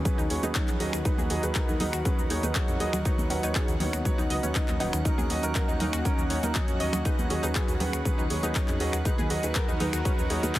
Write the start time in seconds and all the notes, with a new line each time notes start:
Already playing: D#3 C#4 F#4 G#4 B4 F#5 F#6
0.05 F#3 C#4 G#4 B4, kick, closed hi-hat, low conga, cabasa
0.18 D#2 D#4, cabasa
0.30 D#2 F#3 C#4 G#4 C#5, open hi-hat
0.43 D#2 F#3 C#4 D#4 G#4 B4, closed hi-hat, high conga, cabasa
0.55 F#3 C#4 D#4 C#5, kick, clap, closed hi-hat, cabasa
0.68 F2, clap, closed hi-hat, cabasa
0.80 D#2 F#3 C#4 G#4 D#5, open hi-hat
0.93 D#2 F#4, finger snap, closed hi-hat, cabasa
1.05 F#3 D#4 G#4 A#4 B4, kick, closed hi-hat, cabasa
1.18 D#2 G#4, high conga, cabasa
1.30 D#2 F#3 D#4 G#4 D#5, open hi-hat
1.43 D#2 F#3 D#4 G#4 B4, closed hi-hat, cabasa
1.55 F#3 D#4 G#4 A#4 B4, kick, clap, closed hi-hat, cabasa
1.68 D#2 D#4, cabasa
1.80 D#2 F#3 D#4 G#4 B4, open hi-hat, high conga, low conga
1.93 D#2 F#4, finger snap, closed hi-hat, cabasa
2.05 F#3 C#4 D#4 G#4 B4, kick, closed hi-hat, cabasa
2.18 D#2, cabasa
2.30 D#2 F#3 D#4 G#4 C#5, open hi-hat
2.43 D#2 F#3 D#4 G#4 B4, closed hi-hat, high conga, cabasa
2.55 F#3 D#4 G#4 D#5, kick, clap, closed hi-hat, cabasa
2.68 F2, closed hi-hat, cabasa
2.80 D#2 F#3 D#4 G#4 D#5, open hi-hat
2.93 D#2 F#4, finger snap, closed hi-hat, low conga, cabasa
3.05 F#3 B3 C#4 D#4 B4 C#5, kick, closed hi-hat, cabasa
3.18 D#2, high conga, cabasa
3.30 D#2 F#3 C#4 D#4 B4 F#5, open hi-hat
3.43 D#2 F#3 D#4 B4 C#5, closed hi-hat, cabasa
3.55 F#3 D#4 G#4 B4 C#5, kick, clap, closed hi-hat, cabasa
3.68 D#2, closed hi-hat, cabasa
3.80 D#2 D#3 F#3 D#4 B4 C#5, open hi-hat, high conga, low conga
3.93 D#2 F#4, finger snap, closed hi-hat, cabasa
4.05 F#3 D#4 B4 C#5, kick, closed hi-hat, low conga, cabasa
4.18 D#2 D#4, cabasa
4.30 C#2 F#3 D#4 B4 D#5, open hi-hat
4.43 D#2 F#3 C#4 D#4 B4 C#5, closed hi-hat, high conga, cabasa
4.55 F#3 D#4 B4 D#5, kick, clap, closed hi-hat, cabasa
4.68 D#2, clap, closed hi-hat, cabasa
4.80 D#1 F#3 D#4 B4 F#5, open hi-hat
4.93 D#2 D#3, finger snap, closed hi-hat, cabasa
5.05 D#3 F#3 A#3 C#4 D#4 F#4 A#4, kick, closed hi-hat, cabasa
5.18 D#2 G#4, high conga, cabasa
5.30 D#2 F#3 C#4 D#4 D#5, open hi-hat
5.43 D#2 F#3 C#4 D#4 A#4, closed hi-hat, cabasa
5.55 F#3 C#4 D#4 A#4, kick, clap, closed hi-hat, cabasa
5.68 D#2 D#4, cabasa
5.80 D#2 F#3 C#4 D#4 A#4, open hi-hat, high conga, low conga
5.93 D#2 F#4, finger snap, closed hi-hat, cabasa
6.05 F#3 C#4 D#4 A#4, kick, closed hi-hat, cabasa
6.18 D#2, cabasa
6.30 D#2 F#3 C#4 D#4 C#5, open hi-hat
6.43 D#2 F#3 C#4 D#4 A#4, closed hi-hat, high conga, cabasa
6.55 F#3 C#4 D#4 C#5 D#5, kick, clap, closed hi-hat, cabasa
6.68 F2, closed hi-hat, cabasa
6.80 D#2 F#3 C#4 D#4 D#5, open hi-hat
6.93 D#2 F#4, finger snap, closed hi-hat, low conga, cabasa
7.05 D#3 F#3 C#4 D#4 G#4 B4, kick, closed hi-hat, cabasa
7.18 D#2, high conga, cabasa
7.30 D#2 F#3 C#4 G#4 D#5, open hi-hat
7.43 D#2 F#3 C#4 D#4 G#4 B4, closed hi-hat, cabasa
7.55 F#3 C#4 G#4 B4, kick, clap, closed hi-hat, cabasa
7.68 D#2, closed hi-hat, cabasa
7.80 D#2 D#3 F#3 C#4 G#4 B4, open hi-hat, high conga, low conga
7.93 D#2 F#4, finger snap, closed hi-hat, cabasa
8.05 F#3 C#4 G#4 B4, kick, closed hi-hat, low conga, cabasa
8.18 D#2 D#4, cabasa
8.30 D#2 F#3 C#4 G#4 C#5, open hi-hat
8.43 D#2 F#3 C#4 D#4 G#4 B4, closed hi-hat, high conga, cabasa
8.55 F#3 C#4 D#4 G#4 C#5, kick, clap, closed hi-hat, cabasa
8.68 F2, clap, closed hi-hat, cabasa
8.80 D#2 F#3 C#4 G#4 D#5, open hi-hat
8.93 D#2 F#4, finger snap, closed hi-hat, cabasa
9.05 F#3 D#4 F#4 G#4 A#4 B4, kick, closed hi-hat, cabasa
9.18 D#2 G#4, high conga, cabasa
9.30 D#2 F#3 D#4 G#4 D#5, open hi-hat
9.43 D#2 F#3 D#4 G#4 B4, closed hi-hat, cabasa
9.55 F#3 G#4 A#4, kick, clap, closed hi-hat, cabasa
9.68 D#2 D#4, cabasa
9.80 D#2 F#3 D#4 G#4 B4, open hi-hat, high conga, low conga
9.93 D#2 F#4, finger snap, closed hi-hat, cabasa
10.05 F#3 C#4 D#4 G#4 B4, kick, closed hi-hat, cabasa
10.18 D#2, cabasa
10.30 D#2 F#3 D#4 G#4 C#5, open hi-hat
10.43 D#2 F#3 D#4 G#4 B4, closed hi-hat, high conga, cabasa
10.55 F#3 G#4 D#5, kick, clap, closed hi-hat, cabasa